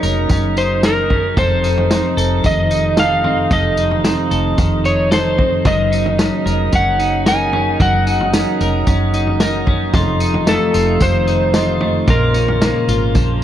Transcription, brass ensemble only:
0.00 1.32 C#3 medium
0.00 1.32 F#3 medium
0.00 1.32 A#3 medium
0.00 1.32 D#4 medium
1.38 5.62 C3 medium
1.38 5.62 F3 medium
1.38 5.62 A3 medium
1.38 5.62 D#4 medium
5.66 9.90 C#3 medium
5.66 9.91 F#3 medium
5.66 9.90 A#3 medium
5.66 12.05 D#4 medium
9.95 12.07 C3 medium
9.95 13.44 F3 medium
9.95 12.06 A3 medium
12.08 13.44 C#3 medium
12.08 13.44 A#3 medium
12.08 13.44 F4 medium

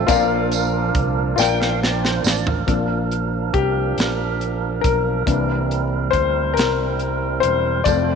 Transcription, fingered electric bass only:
0.09 0.91 A#1 medium
0.95 1.35 C2 medium
1.38 2.21 A#1 medium
2.24 2.64 A1 medium
2.68 3.50 A#1 medium
3.54 3.94 C2 medium
3.97 4.80 A#1 medium
4.84 5.24 B1 medium
5.27 6.09 C2 loud
6.13 6.57 D2 medium
6.57 7.39 C2 medium
7.43 7.83 E1 medium
7.86 8.15 F1 medium

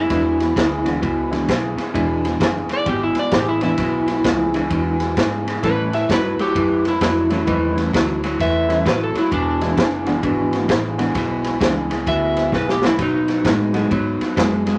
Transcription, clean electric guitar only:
0.10 0.53 E2 medium
0.10 0.54 B2 medium
0.56 0.83 E2 medium
0.56 0.83 C#3 medium
0.85 1.00 E2 medium
0.85 1.01 C#3 medium
1.02 1.45 E2 medium
1.02 1.45 B2 medium
1.49 1.75 E2 medium
1.49 1.75 C#3 medium
1.78 1.93 E2 medium
1.78 1.93 C#3 medium
1.94 2.37 E2 medium
1.94 2.37 B2 medium
2.41 2.67 E2 medium
2.41 2.67 C#3 medium
2.70 2.85 E2 medium
2.70 2.85 C#3 medium
2.87 3.30 E2 medium
2.87 3.30 B2 medium
3.33 3.59 E2 medium
3.33 3.59 C#3 medium
3.62 3.77 E2 medium
3.62 3.77 C#3 medium
3.79 4.22 E2 medium
3.79 4.22 B2 medium
4.26 4.52 E2 medium
4.26 4.52 C#3 medium
4.55 4.70 E2 medium
4.55 4.70 C#3 medium
4.72 5.14 E2 medium
4.72 5.14 B2 medium
5.17 5.44 E2 medium
5.17 5.44 C#3 medium
5.47 5.62 E2 medium
5.47 5.62 C#3 medium
5.64 6.06 A2 medium
5.64 6.06 E3 medium
6.10 6.36 A2 medium
6.10 6.36 F#3 medium
6.39 6.54 A2 medium
6.39 6.54 F#3 medium
6.55 6.98 A2 medium
6.55 6.98 E3 medium
7.01 7.28 A2 medium
7.01 7.28 F#3 medium
7.30 7.45 A2 medium
7.30 7.46 F#3 medium
7.47 7.90 A2 medium
7.47 7.90 E3 medium
7.94 8.20 A2 medium
7.94 8.20 F#3 medium
8.24 8.38 A2 medium
8.24 8.38 F#3 medium
8.40 8.82 A2 medium
8.40 8.83 E3 medium
8.85 9.12 A2 medium
8.85 9.12 F#3 medium
9.15 9.30 A2 medium
9.15 9.30 F#3 medium
9.31 9.74 E2 medium
9.31 9.74 B2 medium
9.77 10.03 E2 medium
9.77 10.04 C#3 medium
10.06 10.21 E2 medium
10.06 10.21 C#3 medium
10.23 10.66 E2 medium
10.23 10.66 B2 medium
10.68 10.95 E2 medium
10.68 10.95 C#3 loud
10.98 11.13 E2 medium
10.98 11.13 C#3 medium
11.16 11.58 E2 medium
11.16 11.58 B2 loud
11.60 11.87 E2 medium
11.60 11.87 C#3 medium
11.90 12.05 E2 medium
11.90 12.05 C#3 medium
12.07 12.50 E2 medium
12.07 12.50 B2 medium
12.53 12.79 E2 medium
12.53 12.80 C#3 medium
12.83 12.97 E2 medium
12.83 12.98 C#3 medium
12.99 13.42 B2 medium
12.99 13.42 F#3 medium
13.45 13.71 B2 medium
13.45 13.72 G#3 medium
13.74 13.89 B2 medium
13.74 13.89 G#3 medium
13.91 14.33 B2 medium
13.91 14.34 F#3 medium
14.36 14.63 B2 medium
14.36 14.63 G#3 medium
14.66 14.78 B2 medium
14.66 14.78 G#3 medium

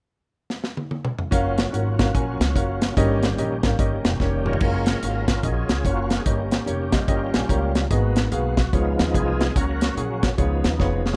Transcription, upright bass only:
1.32 1.67 F#1 medium
1.73 2.08 G#1 medium
2.15 2.37 A#1 medium
2.40 2.53 C#2 medium
2.56 2.91 F#1 medium
2.97 3.32 G1 loud
3.38 3.60 A#1 medium
3.64 3.77 G#1 medium
3.79 4.01 G1 medium
4.05 4.18 F1 medium
4.20 4.55 F1 medium
4.61 4.96 F#1 medium
5.03 5.38 G#1 medium
5.43 5.66 A#1 medium
5.69 5.82 C#2 medium
5.85 6.20 F#1 medium
6.26 6.61 G1 medium
6.67 7.02 F1 medium
7.08 7.30 G1 medium
7.34 7.47 A#1 medium
7.49 7.84 C#2 medium
7.91 8.26 G#1 loud
8.32 8.67 B1 medium
8.73 8.95 C#2 medium
9.00 9.12 D#2 medium
9.14 9.49 C2 medium
9.56 9.91 C#2 medium
9.97 10.32 A#1 medium
10.38 10.60 C#2 medium
10.65 10.78 D#2 medium
10.80 11.15 F1 medium

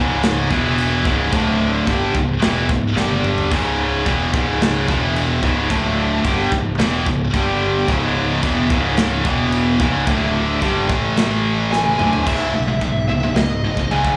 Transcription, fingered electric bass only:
0.00 0.46 C#1 loud
0.50 1.01 E1 loud
1.05 1.31 C#1 loud
1.32 1.83 D1 loud
1.87 2.12 G1 medium
2.15 2.40 C#1 medium
2.42 2.67 E1 loud
2.69 2.94 C#1 medium
2.96 3.47 G1 loud
3.51 4.02 C#1 medium
4.06 4.31 E1 medium
4.33 4.84 C#1 medium
4.88 5.39 E1 loud
5.43 5.68 C#1 loud
5.70 6.21 D1 loud
6.25 6.50 G1 medium
6.52 6.77 C#1 medium
6.78 7.04 E1 loud
7.06 7.32 C#1 medium
7.33 7.84 G1 loud
7.88 8.39 C#1 medium
8.43 8.69 E1 medium
8.70 9.21 C#1 medium
9.25 9.76 E1 loud
9.79 10.05 C#1 medium
10.07 10.58 D1 medium
10.62 10.88 G1 medium
10.89 11.95 A1 medium
12.00 12.25 D1 loud
12.26 12.50 C#1 medium
12.54 12.77 B1 medium
12.81 13.05 B1 medium
13.08 13.32 C#1 medium
13.36 13.59 C#1 medium
13.63 13.87 G#1 medium
13.91 14.15 C#2 medium

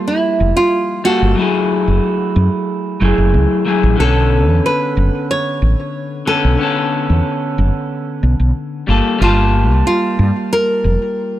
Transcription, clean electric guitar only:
0.00 1.02 F3 medium
0.00 1.00 G3 medium
0.00 1.01 A#3 medium
0.00 1.03 A4 medium
1.04 1.34 G3 medium
1.04 1.34 A#3 medium
1.04 1.35 F4 medium
1.04 1.35 A4 medium
1.35 2.97 F#3 medium
1.35 2.98 A3 medium
1.35 2.99 E4 medium
1.41 2.99 G#4 medium
3.00 3.62 F#3 medium
3.00 3.63 A3 medium
3.00 3.63 E4 medium
3.00 3.64 G#4 medium
3.65 3.95 F#3 medium
3.65 3.95 A3 medium
3.65 3.96 E4 medium
3.65 3.96 G#4 medium
3.96 6.22 D3 medium
3.96 6.23 B3 medium
3.96 6.24 C#4 medium
4.02 6.25 A4 medium
6.26 6.56 D3 medium
6.26 6.56 B3 medium
6.26 6.57 C#4 medium
6.26 6.57 A4 medium
6.57 8.83 D3 medium
6.57 8.84 B3 medium
6.57 8.85 C#4 medium
6.63 8.86 A4 medium
8.87 9.16 G3 medium
8.87 9.17 A#3 medium
8.87 9.17 F4 medium
8.87 9.18 A4 medium
9.18 11.39 G3 medium
9.18 11.39 A#3 medium
9.18 11.39 F4 medium
9.24 11.39 A5 medium

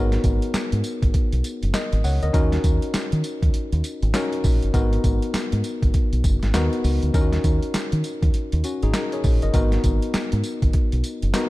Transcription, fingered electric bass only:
0.00 0.17 G#1 loud
0.24 0.38 G#1 loud
0.54 muted fingered electric bass stroke soft
0.73 0.81 G#2 medium
1.03 1.11 G#1 medium
1.14 muted fingered electric bass stroke medium
1.33 1.41 B1 medium
1.63 1.71 F#1 medium
1.93 2.01 G#1 loud
2.04 2.18 C#2 loud
2.23 2.31 D2 medium
2.34 2.57 D#2 medium
2.64 2.78 D#2 loud
2.94 muted fingered electric bass stroke medium
3.13 3.21 D#3 loud
3.43 3.51 D#2 medium
3.54 muted fingered electric bass stroke soft
3.73 3.81 D#2 medium
4.03 4.11 G#1 loud
4.44 4.58 A#1 loud
4.63 4.71 G1 medium
4.74 4.97 G#1 loud
5.04 5.18 G#1 loud
5.34 muted fingered electric bass stroke medium
5.53 5.61 G#2 medium
5.83 5.91 G#1 medium
6.13 6.21 B1 medium
6.24 6.38 F#1 loud
6.43 6.51 G#1 medium
6.54 6.68 D#2 loud
6.84 6.98 C#2 medium
7.03 7.11 D2 medium
7.14 7.37 D#2 loud
7.44 7.58 D#2 loud
7.75 muted fingered electric bass stroke soft
7.93 8.01 D#3 loud
8.23 8.31 D#2 medium
8.35 muted fingered electric bass stroke medium
8.53 8.61 D#2 loud
8.83 8.91 G#1 medium
9.24 9.38 A#1 loud
9.43 9.51 G1 medium
9.54 9.77 G#1 medium
9.84 9.98 G#1 loud
10.14 muted fingered electric bass stroke medium
10.33 10.41 G#2 loud
10.63 10.71 G#1 medium
10.74 muted fingered electric bass stroke medium
10.93 11.01 B1 medium
11.23 11.31 F#1 medium

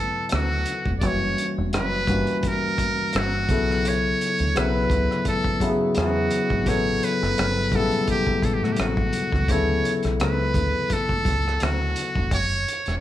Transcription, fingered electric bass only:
0.33 0.63 D2 medium
0.87 1.03 E1 medium
1.03 1.34 F#1 medium
1.58 1.74 E1 medium
1.74 2.05 F#1 medium
2.08 2.25 G1 medium
3.15 3.46 G1 medium
3.50 4.12 B1 medium
4.40 4.54 D2 medium
4.57 4.87 B1 medium
4.91 5.07 C#2 medium
5.97 6.28 E2 medium
6.51 6.65 G#1 medium
6.67 6.98 A1 medium
7.23 7.36 F#1 medium
7.39 7.69 G1 medium
7.73 7.90 A1 medium
8.44 8.60 A1 medium
8.63 8.77 A2 medium
8.79 9.10 A1 medium
9.33 9.47 C#2 medium
9.50 9.81 D2 medium
10.05 10.21 B1 medium
10.21 10.52 C#2 medium
10.55 10.72 D2 medium
11.26 11.57 C#2 medium
11.62 11.93 D2 medium
12.17 12.30 E1 medium
12.32 12.63 F#1 medium
12.87 13.00 E1 medium

